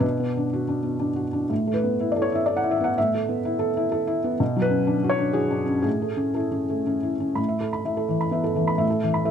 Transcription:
0.00 1.45 B2 soft
0.00 0.13 D4 soft
0.00 1.24 B4 medium
0.20 0.46 B3 soft
0.37 0.62 D4 soft
0.53 0.78 F#4 soft
0.69 0.94 D4 soft
0.83 1.10 B3 soft
1.00 1.26 D4 soft
1.16 1.43 F#4 soft
1.33 1.50 D4 soft
1.50 2.92 A2 soft
1.67 1.93 A3 soft
1.74 2.11 B4 medium
1.84 2.10 B3 soft
2.00 2.26 E4 soft
2.12 2.24 D5 soft
2.16 2.42 A4 soft
2.22 2.35 C#5 medium
2.32 2.58 E4 soft
2.32 2.48 E5 medium
2.46 2.74 A4 soft
2.46 2.59 D5 medium
2.57 2.71 F#5 medium
2.63 2.90 E4 soft
2.71 2.84 E5 medium
2.81 3.06 B3 soft
2.81 2.96 F#5 medium
2.98 4.38 A2 medium
2.98 4.17 E5 medium
3.15 3.39 A3 soft
3.29 3.54 B3 soft
3.45 3.70 E4 soft
3.59 3.85 A4 medium
3.77 4.02 E4 medium
3.92 4.17 A4 medium
4.07 4.33 E4 soft
4.24 4.40 B3 soft
4.40 5.82 B2 medium
4.56 4.81 F#3 soft
4.62 5.10 B4 medium
4.70 4.96 C#4 soft
4.87 5.13 D4 soft
5.04 5.29 F#4 soft
5.10 5.35 C#5 medium
5.19 5.45 D4 soft
5.33 5.61 F#4 soft
5.33 5.81 G#4 medium
5.51 5.78 D4 soft
5.66 5.85 C#4 soft
5.82 7.33 A2 soft
5.82 6.36 G#4 medium
6.02 6.30 A3 soft
6.17 6.46 C#4 soft
6.34 6.64 E4 soft
6.34 7.12 A4 soft
6.52 6.80 C#4 soft
6.70 6.97 A3 soft
6.87 7.14 C#4 soft
7.03 7.31 E4 soft
7.20 7.38 C#4 soft
7.35 8.76 A2 soft
7.35 7.56 B5 soft
7.48 7.69 E5 soft
7.61 7.81 A4 soft
7.73 7.93 B5 soft
7.85 8.24 A3 soft
7.85 8.05 E5 soft
7.97 8.17 A4 soft
8.09 8.29 E3 soft
8.21 8.41 B5 soft
8.31 8.71 B3 soft
8.31 8.53 E5 soft
8.44 8.64 A4 soft
8.55 8.76 E3 soft
8.55 8.95 A3 soft
8.67 8.88 B5 soft
8.78 9.31 A2 medium
8.78 8.99 E5 soft
8.90 9.11 A4 soft
9.03 9.23 E3 soft
9.14 9.31 B5 soft
9.25 9.31 A3 soft
9.25 9.31 E5 soft

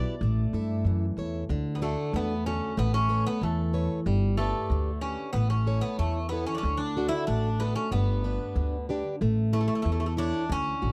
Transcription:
0.00 0.19 B2 medium
0.00 0.14 E4 medium
0.00 0.15 G4 soft
0.00 0.15 B4 medium
0.00 1.13 D5 medium
0.21 0.43 A1 loud
0.21 0.84 A3 medium
0.53 0.82 G2 medium
0.53 1.05 E4 medium
0.53 1.05 A4 medium
0.53 1.05 E5 medium
0.85 1.14 F#2 medium
0.85 1.48 E3 medium
1.17 1.46 E2 medium
1.17 1.43 E4 soft
1.17 1.43 A4 soft
1.17 1.44 C#5 medium
1.49 1.94 D2 loud
1.49 2.12 D3 medium
1.75 1.82 B3 medium
1.82 2.12 A3 medium
1.82 2.33 D4 medium
1.82 2.33 F#4 soft
1.82 2.33 A4 medium
2.13 2.58 E2 medium
2.13 2.76 A3 medium
2.13 2.45 B3 medium
2.46 2.72 D3 soft
2.46 2.76 C#4 loud
2.46 2.73 F#4 soft
2.46 2.72 A4 soft
2.77 3.23 A1 loud
2.77 3.40 A3 medium
2.77 2.93 B3 medium
2.94 3.26 C#4 loud
3.09 3.61 A4 medium
3.09 3.61 B4 soft
3.09 3.61 C#5 medium
3.27 3.41 B3 medium
3.41 3.87 E2 loud
3.41 4.05 E3 medium
3.41 4.03 A3 medium
3.73 3.99 A4 soft
3.73 3.99 B4 soft
3.73 4.00 C#5 medium
4.06 4.51 G1 loud
4.06 4.38 G3 medium
4.37 4.98 A3 medium
4.37 4.90 G4 medium
4.37 4.90 B4 soft
4.37 4.91 D5 medium
4.70 5.15 D2 medium
4.70 5.34 D3 medium
5.01 5.32 C#4 medium
5.01 5.29 G4 medium
5.01 5.29 B4 soft
5.33 5.79 A1 loud
5.33 5.98 A3 medium
5.33 5.49 B3 medium
5.50 5.81 C#4 medium
5.67 6.18 E4 medium
5.67 6.19 A4 soft
5.67 6.19 C#5 medium
5.81 5.98 B3 medium
5.99 6.44 E2 medium
5.99 6.62 E3 medium
5.99 6.29 A3 medium
6.29 6.45 B3 medium
6.29 6.58 E4 soft
6.29 6.58 A4 soft
6.29 6.58 C#5 medium
6.46 6.53 C#4 medium
6.55 6.77 C#4 medium
6.55 6.62 D4 medium
6.63 7.08 D2 loud
6.63 7.27 D3 medium
6.77 7.08 D4 medium
6.97 7.48 D4 soft
6.97 7.48 F#4 soft
6.97 7.48 A4 medium
7.08 7.25 E4 loud
7.27 7.73 A1 medium
7.27 7.90 A3 medium
7.27 7.61 D4 medium
7.60 7.75 B3 medium
7.60 7.86 D4 medium
7.60 7.86 F#4 soft
7.60 7.87 A4 medium
7.75 7.92 C#4 medium
7.91 8.37 G1 loud
7.91 8.24 G3 medium
7.91 8.85 B3 medium
8.24 8.76 D4 medium
8.24 8.76 G4 soft
8.24 8.76 B4 medium
8.55 9.01 D2 medium
8.55 9.19 D3 medium
8.89 9.15 D4 soft
8.89 9.15 G4 soft
8.89 9.15 B4 medium
9.21 9.66 A1 loud
9.21 9.84 A3 medium
9.53 9.59 A3 medium
9.53 10.05 E4 medium
9.53 10.05 A4 soft
9.53 10.05 C#5 medium
9.61 9.66 A3 medium
9.68 9.74 A3 medium
9.75 9.81 A3 medium
9.82 10.30 E2 loud
9.82 10.48 E3 medium
9.82 9.90 A3 medium
9.92 9.98 A3 medium
10.00 10.05 A3 medium
10.06 10.13 A3 medium
10.17 10.48 D4 loud
10.17 10.43 E4 medium
10.17 10.44 A4 soft
10.17 10.44 C#5 medium
10.49 10.72 D2 loud
10.49 10.92 D3 medium
10.49 10.92 C#4 loud
10.82 10.92 A1 medium
10.82 10.92 F#4 soft
10.82 10.92 A4 medium

